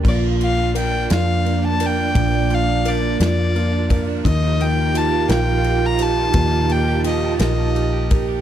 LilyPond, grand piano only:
\new Staff \with { instrumentName = "Grand piano" } { \time 6/8 \key bes \major \tempo 4. = 57 bes8 f'8 bes'8 f'8 bes8 bes'8 | f8 f'8 bes'8 f'8 bes8 bes'8 | ees8 bes8 g'8 bes'8 g'8 bes'8 | bes,8 bes8 g'8 bes'8 g'8 bes'8 | }